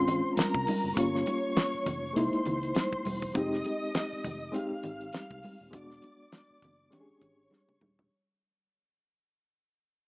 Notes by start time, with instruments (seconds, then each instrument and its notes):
Already playing: fingered electric bass G#1, reed electric piano G#3 C4 C#4 F4, string section C5 C6
0.08 closed hi-hat, low conga
0.37 string section A#4 A#5, muted fingered electric bass stroke, snare, closed hi-hat, high conga
0.54 fingered electric bass C2, kick
0.67 open hi-hat, high conga
0.84 fingered electric bass F#1
0.95 fingered electric bass G1, reed electric piano G3 A#3 C#4 F4, string section C#5 C#6, kick, closed hi-hat
1.15 snare
1.26 closed hi-hat, muted conga
1.57 snare, closed hi-hat, high conga
1.74 muted fingered electric bass stroke
1.86 fingered electric bass F1, kick, closed hi-hat, low conga
2.13 fingered electric bass C2, reed electric piano G#3 A#3 D#4 E4, string section C5 C6, closed hi-hat
2.17 muted conga
2.33 closed hi-hat
2.46 fingered electric bass C#2, closed hi-hat, low conga
2.63 closed hi-hat
2.75 snare, closed hi-hat, high conga
2.93 kick
3.05 fingered electric bass E1, open hi-hat, high conga
3.22 kick
3.34 fingered electric bass F1, reed electric piano G3 C4 D#4 G4, string section D#5 D#6, kick, closed hi-hat, muted conga
3.40 reed electric piano G#3
3.53 snare
3.64 closed hi-hat, muted conga
3.95 snare, closed hi-hat, high conga
4.13 muted fingered electric bass stroke
4.24 fingered electric bass F1, kick, closed hi-hat, low conga
4.52 reed electric piano G#3 C4 D#4 G4, string section F5 F6, closed hi-hat, muted conga
4.71 muted fingered electric bass stroke
4.83 fingered electric bass G#1, closed hi-hat, low conga
5.01 closed hi-hat
5.13 snare, closed hi-hat, high conga
5.31 fingered electric bass C2, kick
5.43 open hi-hat, high conga
5.61 fingered electric bass D#1
5.71 fingered electric bass E1, reed electric piano G#3 B3 D4 F#4, string section D5 D6, kick, closed hi-hat, muted conga
5.90 snare
6.02 closed hi-hat, muted conga
6.32 snare, closed hi-hat, high conga
6.50 muted fingered electric bass stroke
6.62 fingered electric bass F#1, kick, closed hi-hat, low conga
6.90 reed electric piano G#3 C#4 D4 G4, string section C#5 C#6, closed hi-hat, muted conga, low conga
7.01 reed electric piano G#4
7.10 muted fingered electric bass stroke
7.21 fingered electric bass G#1, kick, closed hi-hat, low conga
7.51 snare, high conga
7.69 high tom
7.81 fingered electric bass D#1, mid tom, high conga
7.99 floor tom